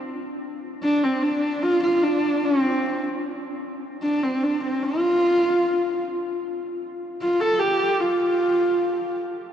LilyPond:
\new Staff \with { instrumentName = "Horsehead fiddle" } { \time 4/4 \tempo 4 = 75 r4 d'16 c'16 d'8 f'16 f'16 d'8 c'8. r16 | r4 d'16 c'16 d'16 c'16 f'4. r8 | r4 f'16 a'16 g'8 f'4. r8 | }